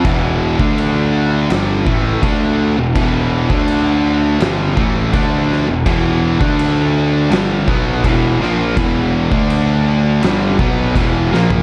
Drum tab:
CC |x---x---x---x---|x---x---x---x---|x---x---x---x---|x---x---x---x---|
SD |--------o-------|--------o-----o-|--------o-----o-|--------o-----o-|
FT |----------------|----------------|----------------|---------------o|
BD |o--o------o-o---|o--o------o-o---|o--o------o-o---|o--o------o-o---|